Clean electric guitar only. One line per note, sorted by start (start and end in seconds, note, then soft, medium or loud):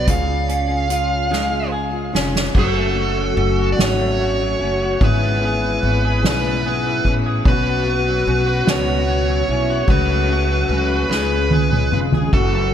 0.00 0.16 F#3 medium
0.00 0.16 B3 medium
0.00 0.15 F#4 medium
0.00 0.16 B4 medium
0.08 2.55 C#3 medium
0.48 2.15 C#4 medium
0.90 2.63 F4 medium
1.31 2.63 G#3 medium
1.72 2.57 G#4 medium
2.15 2.77 C#4 medium
2.56 3.78 F#2 medium
2.56 2.97 F#4 medium
2.77 3.98 A3 soft
2.98 3.58 F#4 medium
3.18 4.40 F#3 medium
3.38 4.61 C#4 medium
3.59 3.78 F#4 medium
3.79 5.01 F#2 medium
3.79 4.20 F#4 medium
3.99 5.09 A3 medium
4.21 4.81 F#4 medium
4.41 5.10 F#3 medium
4.61 5.26 C#4 medium
4.83 5.02 F#4 medium
5.02 6.24 G#2 medium
5.02 5.43 G#4 medium
5.23 6.45 B3 medium
5.45 6.04 G#4 medium
5.64 6.85 E3 medium
5.85 7.07 C#4 medium
6.05 6.24 G#4 medium
6.25 7.46 G#2 medium
6.25 6.65 G#4 medium
6.45 7.67 B3 medium
6.66 7.25 G#4 medium
6.87 7.55 E3 medium
7.08 7.71 C#4 medium
7.26 7.46 G#4 medium
7.48 8.65 B2 medium
7.48 7.87 F#4 medium
7.68 8.87 B3 medium
7.88 8.46 F#4 medium
8.08 9.28 F#3 medium
8.28 9.50 C#4 medium
8.46 8.67 F#4 medium
8.66 9.88 B2 medium
8.66 9.09 F#4 medium
8.88 9.97 B3 medium
9.09 9.69 F#4 medium
9.29 9.97 F#3 medium
9.51 10.71 C#4 medium
9.70 9.89 F#4 medium
9.90 11.10 C#3 medium
9.90 10.30 F#4 medium
10.11 11.20 A3 medium
10.31 10.91 F#4 medium
10.52 11.20 F#3 medium
10.71 11.31 C#4 medium
10.92 11.11 F#4 medium
11.11 12.42 C#3 medium
11.11 11.52 G#4 soft
11.31 12.54 C#4 medium
11.53 12.13 G#4 medium
11.73 12.42 G#3 medium
11.93 12.42 F4 medium
12.14 12.34 G#4 medium
12.33 12.74 F#2 medium
12.33 12.74 F#4 medium
12.54 12.74 A3 medium